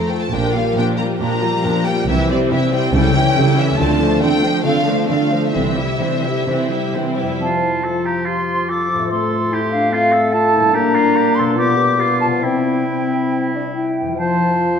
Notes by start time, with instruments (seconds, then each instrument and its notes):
Already playing: cello section F2, harp F3 C4 C5, viola section A3
0.08 harp F4, violin section F4 A4 G5
0.21 violin section A5
0.31 double bass section A#1, harp A#2, cello section A#2, viola section F3 D4, violin section G4 A#4 G5
0.54 harp F3, viola section G3 A#3, violin section F4 G4 F5
0.76 cello section A#2, viola section F3 D4, harp F4, violin section G4 A#4 G5
0.97 viola section G3 A#3, violin section F4 G4 A#5, harp G4
1.19 harp A#2, cello section A#2, viola section F3 D4, violin section G4 A#4 A#5
1.41 harp F3, viola section G3 A#3, violin section F4 G4
1.64 cello section A#2, viola section F3 D4, harp F4, violin section G4 A#4
1.85 viola section G3 A#3, violin section F4 G4 G5, harp G4
2.07 double bass section C2, harp C3, cello section C3, viola section E3 E4, violin section C4 G4 E5
2.28 harp G3, viola section G3 C4, violin section E4 C5 D5
2.49 cello section C3, viola section E3 E4, violin section C4 G4 E5, harp E4
2.73 viola section G3 C4, violin section E4 C5 G5, harp G4
2.92 double bass section C#2, harp C#3, cello section C#3, viola section G3 E4, violin section C#4 A4 G5
3.14 viola section E3 C#4, harp G3, violin section E4 G4
3.35 cello section C#3, viola section G3 E4, violin section C#4 A4, harp E4
3.57 viola section E3 C#4, violin section E4 G4 E5, harp A4
3.79 double bass section D2, harp D3, cello section D3, viola section A3 C4, violin section F4 A4 A5
4.00 viola section F3 A3, harp A3, violin section D4 C5
4.21 cello section D3, viola section A3 C4, harp F4, violin section F4 A4 G5
4.42 viola section F3 A3, violin section D4 C5, harp A4
4.64 cello section D3, harp D3, viola section A3 C4, violin section F4 A4 F5
4.86 viola section F3 A3, harp A3, violin section D4 C5
5.07 cello section D3, viola section A3 C4, violin section F4 A4 F5, harp F4
5.30 viola section F3 A3, violin section D4 C5, harp A4
5.53 double bass section C2, harp C3, cello section C3, viola section E3 C4, violin section E4 C5 E5
5.77 viola section G3 E4, harp G3, violin section G4 E5
6.01 cello section C3, viola section E3 C4, violin section E4 C5, harp G4
6.25 viola section G3 E4, violin section G4 E5, harp C5
6.48 cello section C3, harp C3, viola section E3 C4, violin section E4 C5
6.71 viola section G3 E4, harp G3, violin section G4 E5
6.94 cello section C3, viola section E3 C4, violin section E4 C5, harp G4, flute G5
7.18 viola section G3 E4, violin section G4 E5, harp C5
7.22 harp F2
7.27 harp C4
7.31 harp F4
7.35 harp C5
7.40 french horn section F3, clarinet C4, oboe F4, flute A5
7.61 clarinet E4
7.83 clarinet F4, oboe A4
8.05 oboe G4, flute A#5
8.25 oboe F4, clarinet G4, flute C6
8.67 clarinet F4, oboe A4, flute D6
8.90 harp A2, clarinet F4
8.97 harp C4
9.02 harp F4
9.06 harp C5, flute C6
9.11 french horn section A3, oboe A4
9.51 clarinet E4, oboe G4
9.71 clarinet D4, flute F5
9.91 clarinet C4, oboe F4, flute F5
10.13 oboe A4
10.32 clarinet F4, oboe A4, flute A5
10.53 harp A#2, clarinet E4
10.60 harp G3
10.65 harp D4
10.69 clarinet D4, harp D5
10.74 french horn section A#3, oboe G4, flute A#5
10.96 oboe F4
11.17 oboe G4
11.35 harp B2, oboe A4, flute C6
11.43 harp G3
11.47 harp F4
11.52 harp D5
11.56 french horn section B3, clarinet F4, oboe G4, flute D6
11.77 clarinet G4
11.98 oboe F4, clarinet G4
12.20 clarinet F4, flute A5
12.25 harp C3
12.29 harp G3
12.34 harp E4
12.38 harp C5
12.42 french horn section C4, clarinet E4, oboe E4, flute G5
12.87 french horn section C4
13.54 french horn section D4
13.74 french horn section E4, flute G5
14.01 harp F2
14.05 harp F3
14.10 harp F4
14.15 french horn section F3, harp C5, flute A5
14.19 clarinet F4, oboe C5